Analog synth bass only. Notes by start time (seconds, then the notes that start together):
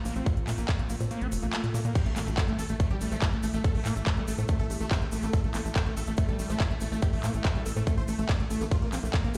0.05 A#1
0.16 A#1
0.37 A#1
0.47 A#2
0.58 A#1
0.79 A#1
0.90 A#1
1.00 A#2
1.21 A#1
1.32 F1
1.43 A#1
1.64 A#2
1.74 A#2
1.85 A#2
2.06 A1
2.16 A1
2.27 A1
2.48 A1
2.59 A1
2.69 A1
2.90 A1
3.01 A1
3.12 A1
3.33 A1
3.43 A1
3.54 A1
3.75 A1
3.86 A2
3.96 A1
4.17 A1
4.28 A1
4.38 A2
4.59 A1
4.70 A1
4.81 A1
5.02 A1
5.12 A1
5.23 A1
5.44 A1
5.55 A1
5.65 A1
5.86 A1
5.97 A1
6.07 A1
6.28 A1
6.39 A1
6.50 A1
6.71 A1
6.81 A1
6.92 A1
7.13 A1
7.24 A2
7.34 A1
7.55 A1
7.66 A1
7.76 A2
7.97 A1
8.08 A1
8.19 A1
8.40 A1
8.50 A1
8.61 A1
8.82 A#1
8.93 A#1
9.03 A#1
9.24 A#1